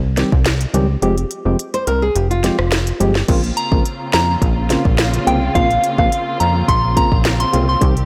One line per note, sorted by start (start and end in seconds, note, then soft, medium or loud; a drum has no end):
0.00 0.24 C2 loud
0.17 0.30 D#3 medium
0.17 0.30 G3 medium
0.17 0.30 C4 medium
0.17 0.30 G4 medium
0.17 snare medium
0.17 closed hi-hat medium
0.32 0.66 C2 medium
0.32 kick loud
0.46 snare loud
0.46 closed hi-hat medium
0.61 closed hi-hat medium
0.74 0.97 C#2 loud
0.74 0.87 D#3 medium
0.74 0.87 G3 medium
0.74 0.87 C4 medium
0.74 0.87 G4 medium
0.74 closed hi-hat medium
1.02 1.25 F1 loud
1.02 1.15 F3 medium
1.02 1.15 G#3 medium
1.02 1.15 C4 medium
1.02 1.16 G4 loud
1.02 closed hi-hat medium
1.18 closed hi-hat soft
1.31 closed hi-hat medium
1.45 1.56 F1 loud
1.45 1.57 F3 medium
1.45 1.57 G#3 medium
1.45 1.57 C4 medium
1.45 1.57 G4 medium
1.59 closed hi-hat medium
1.74 1.87 C5 medium
1.74 closed hi-hat medium
1.87 2.10 C2 medium
1.87 2.01 A#4 medium
1.87 closed hi-hat medium
2.02 2.15 G#4 medium
2.15 2.51 F1 loud
2.15 2.30 G4 medium
2.15 closed hi-hat medium
2.31 3.11 F4 medium
2.31 closed hi-hat soft
2.43 2.57 F3 medium
2.43 2.57 G#3 medium
2.43 2.57 C4 medium
2.43 2.57 G4 medium
2.43 snare medium
2.43 closed hi-hat medium
2.59 2.93 F1 medium
2.59 cross-stick loud
2.72 snare loud
2.72 closed hi-hat medium
2.87 closed hi-hat medium
3.00 3.23 G1 loud
3.00 3.13 F3 medium
3.00 3.13 G#3 medium
3.00 3.13 C4 medium
3.00 3.14 G4 medium
3.00 closed hi-hat medium
3.15 snare medium
3.28 3.52 A#1 loud
3.28 7.77 C#3 medium
3.28 3.41 C#3 medium
3.28 7.77 A#3 medium
3.28 3.42 A#3 medium
3.28 8.05 C4 medium
3.28 3.42 C4 medium
3.28 7.77 F4 medium
3.28 3.42 F4 loud
3.28 kick loud
3.28 closed hi-hat medium
3.28 crash loud
3.44 closed hi-hat soft
3.57 3.70 A#5 medium
3.57 closed hi-hat medium
3.71 3.83 A#1 medium
3.71 3.83 C#3 medium
3.71 3.83 A#3 medium
3.71 3.83 C4 medium
3.71 3.84 F4 medium
3.71 kick medium
3.85 closed hi-hat medium
4.13 4.37 F2 medium
4.13 4.27 A#5 medium
4.13 snare loud
4.13 closed hi-hat medium
4.42 4.77 A#1 loud
4.42 kick medium
4.42 closed hi-hat medium
4.69 4.83 C#3 medium
4.69 4.83 A#3 medium
4.69 4.83 C4 medium
4.69 4.83 F4 medium
4.69 snare medium
4.69 closed hi-hat medium
4.85 5.19 A#1 medium
4.85 kick loud
4.98 snare loud
4.98 closed hi-hat medium
5.14 closed hi-hat medium
5.26 5.50 C2 medium
5.26 5.40 C#3 medium
5.26 5.40 A#3 medium
5.26 5.40 C4 medium
5.26 5.40 F4 medium
5.26 5.40 G5 medium
5.26 closed hi-hat medium
5.55 5.78 A#1 loud
5.55 5.68 C#3 medium
5.55 5.68 A#3 medium
5.55 5.68 C4 medium
5.55 5.68 F4 loud
5.55 5.80 F5 loud
5.55 kick loud
5.55 closed hi-hat medium
5.71 closed hi-hat soft
5.84 closed hi-hat medium
5.98 6.09 A#1 loud
5.98 6.10 C#3 medium
5.98 6.10 A#3 medium
5.98 6.10 C4 medium
5.98 6.10 F4 medium
5.98 6.10 F5 medium
5.98 kick loud
6.12 closed hi-hat medium
6.40 6.63 F2 medium
6.40 6.53 A#5 medium
6.40 closed hi-hat medium
6.68 7.04 A#1 loud
6.68 6.81 C6 medium
6.68 kick medium
6.68 closed hi-hat medium
6.96 7.09 C#3 medium
6.96 7.09 A#3 medium
6.96 7.10 C4 medium
6.96 7.10 F4 medium
6.96 7.10 A#5 medium
6.96 kick medium
6.96 closed hi-hat medium
7.12 7.46 A#1 medium
7.12 kick loud
7.25 snare loud
7.25 closed hi-hat medium
7.40 7.52 C6 medium
7.40 closed hi-hat medium
7.53 7.76 C2 loud
7.53 7.66 C#3 medium
7.53 7.66 A#3 medium
7.53 7.66 C4 medium
7.53 7.66 F4 medium
7.53 closed hi-hat medium
7.69 7.80 C6 medium
7.81 8.05 C2 loud
7.81 7.94 D#3 medium
7.81 8.05 D#3 medium
7.81 7.94 G3 medium
7.81 8.05 G3 medium
7.81 7.94 C4 medium
7.81 7.95 G4 loud
7.81 8.05 G4 medium
7.81 kick loud
7.81 closed hi-hat medium
7.97 closed hi-hat soft